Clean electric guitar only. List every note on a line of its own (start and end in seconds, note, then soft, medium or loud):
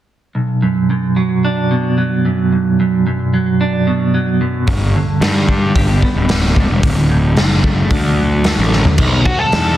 0.35 1.70 B1 medium
0.62 0.89 F#2 medium
0.90 2.24 F#2 medium
1.16 1.97 F#3 soft
1.44 3.60 D4 medium
1.71 3.06 B2 medium
1.98 3.32 F#3 soft
2.25 2.79 F#2 medium
2.52 3.87 B1 medium
2.80 3.05 F#2 medium
3.07 4.40 F#2 medium
3.34 4.13 F#3 soft
3.61 5.49 D4 medium
3.87 4.68 B2 medium
4.14 4.68 F#3 medium
4.41 4.68 F#2 medium
4.69 6.03 G2 medium
4.95 6.30 D3 medium
5.22 6.56 G3 medium
5.49 6.29 D4 medium
5.75 6.83 G4 medium
6.03 6.84 B3 medium
6.30 7.63 D4 soft
6.57 6.84 G3 medium
6.84 8.19 D2 medium
7.10 8.45 A2 medium
7.37 8.71 D3 medium
7.64 8.45 A3 medium
7.91 8.99 D4 medium
8.19 9.00 F#3 medium
8.46 9.00 A3 medium
8.73 8.99 D3 soft
8.99 9.77 B1 medium
9.53 9.77 D4 medium